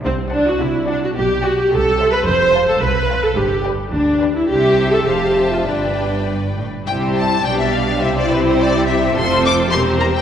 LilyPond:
<<
  \new Staff \with { instrumentName = "Violin section" } { \time 2/4 \key d \mixolydian \tempo 4 = 106 r8 a''8 r8 a''8 | r8 g''8 r8 g''8 | \key c \major r8 a''8 r8 a''8 | r8 g''8 r8 g''8 |
g''4 a''4 | g''4. r8 | g''8 a''8 g''16 e''16 f''8 | e''16 d''16 b'16 c''16 d''8 e''8 |
c'''8 d'''8 c'''8 bes''16 g''16 | }
  \new Staff \with { instrumentName = "Violin section" } { \time 2/4 \key d \mixolydian << { r8 fis''8 r8 fis''8 | r8 g''8 r8 e''8 | \key c \major r8 f''8 r8 f''8 | r8 d''8 r8 d''8 |
e''4 f''8 e''8 | d''4. r8 | <g' c''>4 <g' d''>4 | <g' c''>2 |
<a' c''>4 <bes' c''>4 | } \\ { r8 d''8 r8 d''8 | r8 d''8 r8 c''8 | r8 c''8 r8 c''8 | r8 b'8 r8 b'8 |
c''4 c''4 | b'4. r8 | r2 | r2 |
r2 | } >> }
  \new Staff \with { instrumentName = "Viola section" } { \time 2/4 \key d \mixolydian c'8 d'16 fis'16 e'8 d'16 fis'16 | g'8 fis'16 g'16 a'8. b'16 | \key c \major c''8. a'16 b'8. a'16 | g'8 r8 d'8. e'16 |
g'8. a'16 g'8. f'16 | d'4 r4 | <g e'>4 <g d'>4 | <c' e'>2 |
<c' f'>4 <c' g'>4 | }
  \new Staff \with { instrumentName = "Cello section" } { \clef bass \time 2/4 \key d \mixolydian c4 c4 | b,4 c4 | \key c \major f,4 c,4 | g,4 d,4 |
c4 f,4 | g,4 g,8 a,8 | c4 b,4 | c2 |
f,4 e,4 | }
  \new Staff \with { instrumentName = "Double bass section" } { \clef bass \time 2/4 \key d \mixolydian c,4 c,4 | b,,4 c,4 | \key c \major f,,4 c,4 | g,,4 d,4 |
c,4 f,,4 | g,,4. r8 | c,4 b,,4 | c,2 |
f,,4 e,,4 | }
>>